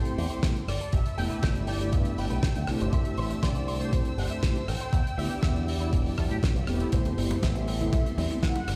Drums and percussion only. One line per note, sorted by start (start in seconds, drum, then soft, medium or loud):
0.05 closed hi-hat medium
0.18 open hi-hat loud
0.31 closed hi-hat medium
0.43 kick loud
0.43 snare loud
0.43 closed hi-hat loud
0.56 closed hi-hat medium
0.68 cross-stick medium
0.68 open hi-hat loud
0.81 closed hi-hat medium
0.92 kick loud
0.92 closed hi-hat medium
1.06 closed hi-hat medium
1.18 open hi-hat loud
1.31 closed hi-hat medium
1.43 kick loud
1.43 snare loud
1.43 closed hi-hat loud
1.55 closed hi-hat medium
1.67 open hi-hat loud
1.81 closed hi-hat medium
1.93 kick loud
1.93 closed hi-hat loud
2.05 closed hi-hat medium
2.18 open hi-hat loud
2.30 closed hi-hat medium
2.43 kick loud
2.43 snare loud
2.43 closed hi-hat loud
2.56 closed hi-hat medium
2.67 cross-stick medium
2.67 open hi-hat loud
2.80 closed hi-hat medium
2.93 kick loud
2.93 closed hi-hat medium
3.05 closed hi-hat medium
3.18 open hi-hat loud
3.30 closed hi-hat medium
3.43 kick loud
3.43 snare loud
3.43 closed hi-hat loud
3.55 closed hi-hat medium
3.68 open hi-hat loud
3.81 closed hi-hat medium
3.93 kick loud
3.93 closed hi-hat loud
4.05 closed hi-hat medium
4.18 open hi-hat loud
4.30 closed hi-hat medium
4.43 kick loud
4.43 snare loud
4.43 closed hi-hat loud
4.56 closed hi-hat medium
4.68 cross-stick medium
4.68 open hi-hat loud
4.80 closed hi-hat medium
4.93 kick loud
4.93 closed hi-hat loud
5.07 closed hi-hat medium
5.19 open hi-hat loud
5.31 closed hi-hat medium
5.43 kick loud
5.43 snare loud
5.43 closed hi-hat loud
5.56 closed hi-hat medium
5.68 open hi-hat loud
5.81 closed hi-hat medium
5.93 kick loud
5.93 closed hi-hat loud
6.06 open hi-hat medium
6.18 kick medium
6.18 cross-stick medium
6.18 open hi-hat loud
6.31 closed hi-hat medium
6.43 kick loud
6.43 snare loud
6.43 closed hi-hat loud
6.56 closed hi-hat medium
6.67 cross-stick medium
6.67 open hi-hat loud
6.80 closed hi-hat medium
6.92 kick loud
6.92 closed hi-hat loud
6.92 muted conga medium
7.05 closed hi-hat medium
7.05 low conga medium
7.18 open hi-hat loud
7.31 closed hi-hat medium
7.31 muted conga medium
7.43 kick loud
7.43 snare loud
7.43 closed hi-hat loud
7.56 closed hi-hat medium
7.56 muted conga medium
7.68 open hi-hat loud
7.81 closed hi-hat medium
7.81 low conga medium
7.93 kick loud
7.93 closed hi-hat loud
7.93 muted conga medium
8.06 closed hi-hat medium
8.18 open hi-hat loud
8.18 muted conga medium
8.18 high conga medium
8.31 closed hi-hat medium
8.43 kick loud
8.43 snare loud
8.43 closed hi-hat loud
8.55 closed hi-hat medium
8.55 muted conga medium
8.68 cross-stick medium
8.68 open hi-hat loud